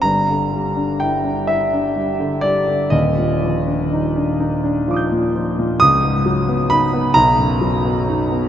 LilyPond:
<<
  \new Staff \with { instrumentName = "Grand piano" } { \time 6/8 \key ees \lydian \tempo 4. = 42 << { r2. | r2 <f'' d''' ees''' g'''>4 | \key des \mixolydian r2. | } \\ { bes''4 g''8 e''4 d''8 | ees''2~ ees''8 r8 | ees'''4 ces'''8 ais''4. | } >> }
  \new Staff \with { instrumentName = "Grand piano" } { \clef bass \time 6/8 \key ees \lydian <g,, g,>16 d16 g16 d'16 e'16 d'16 e'16 d'16 g16 d16 g16 d16 | <ees,, ees,>16 bes,16 f16 d'16 ees'16 d'16 ees'16 d'16 f16 bes,16 f16 bes,16 | \key des \mixolydian des,16 aes,16 ges16 ces'16 ees'16 ces'16 b,,16 fis,16 fis16 b16 dis'16 b16 | }
>>